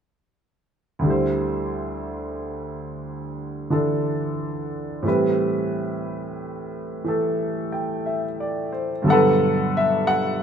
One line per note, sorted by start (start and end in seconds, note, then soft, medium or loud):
0.99 5.02 D2 soft
0.99 3.69 D3 soft
1.04 5.04 G3 soft
1.04 5.06 E4 soft
1.10 5.08 C5 soft
3.70 5.04 D3 soft
3.70 5.02 E3 soft
3.70 5.04 D4 soft
3.70 5.05 A4 soft
5.03 9.04 A2 soft
5.03 7.03 E3 soft
5.03 9.06 G3 soft
5.07 9.06 C4 soft
5.07 9.07 B4 soft
7.04 9.05 E3 soft
7.04 9.06 A3 soft
7.04 9.06 A4 soft
7.72 8.24 G5 soft
8.06 8.69 E5 soft
8.40 8.91 D5 soft
8.72 9.24 C5 soft
9.02 10.43 G2 soft
9.02 10.43 B2 soft
9.02 10.43 D3 soft
9.02 10.43 F#3 soft
9.08 9.11 A4 medium
9.08 9.77 F#5 medium
9.12 10.43 A4 medium
9.12 10.43 B4 medium
9.77 10.06 E5 medium
10.07 10.43 F#5 medium